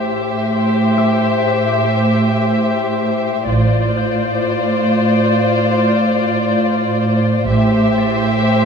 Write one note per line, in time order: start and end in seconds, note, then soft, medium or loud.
0.00 0.44 A1 soft
0.00 3.44 A2 soft
0.00 3.44 G4 soft
0.00 3.44 C5 soft
0.00 3.44 E5 soft
0.97 3.98 E5 soft
0.97 3.98 E6 soft
3.48 4.44 A1 soft
3.48 7.44 A2 soft
3.48 7.44 F4 soft
3.48 7.44 C5 soft
3.48 7.44 D5 soft
3.97 7.87 G6 soft
7.48 8.45 A1 soft
7.48 8.65 A2 soft
7.48 8.65 G4 soft
7.48 8.65 C5 soft
7.48 8.65 E5 soft
7.98 8.65 A6 soft